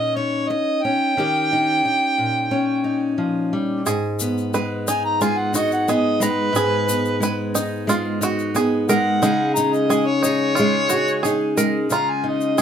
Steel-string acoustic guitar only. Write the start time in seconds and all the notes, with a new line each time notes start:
Already playing: A#2 C#4 D#4 G4
0.17 D#4
0.50 muted steel-string acoustic guitar stroke
0.85 C#4
1.17 D#3 C#4 D#4 G4
1.53 D#4
1.85 muted steel-string acoustic guitar stroke
2.18 A#2
2.51 C#4
2.84 D#4
3.18 F3
3.53 G3
3.86 G#2
4.21 B3
4.54 G#3
4.88 D#4
5.21 G#3
5.54 D#4
5.88 B3
6.20 G#3
6.53 G#2
6.89 B3
7.20 G#3
7.54 D#4
7.87 G#3
8.21 D#4
8.55 B3
8.89 G#3
9.22 C#3 G#3 D#4 G#4
9.57 D#4
9.89 G#3
10.25 G#4
10.59 G#3
10.92 G#4
11.25 D#4
11.57 G#3
11.90 C#3
12.24 D#4
12.58 G#3